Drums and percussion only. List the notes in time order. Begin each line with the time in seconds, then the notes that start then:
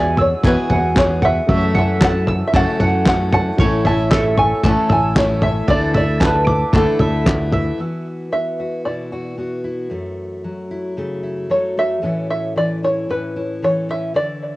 0.17 floor tom
0.43 kick, clap, floor tom
0.70 floor tom
0.96 kick, snare, clap, floor tom
1.22 floor tom
1.49 kick, floor tom
1.75 floor tom
2.01 kick, snare, clap, floor tom
2.27 floor tom
2.54 kick, clap, floor tom
2.80 floor tom
3.06 kick, snare, clap, floor tom
3.33 floor tom
3.58 kick, floor tom
3.85 floor tom
4.11 kick, snare, clap, floor tom
4.38 floor tom
4.64 kick, clap, floor tom
4.90 floor tom
5.16 kick, snare, clap, floor tom
5.42 floor tom
5.68 kick, floor tom
5.95 floor tom
6.21 kick, snare, clap, floor tom
6.47 floor tom
6.73 kick, clap, floor tom
6.99 floor tom
7.26 kick, snare, clap, floor tom
7.52 floor tom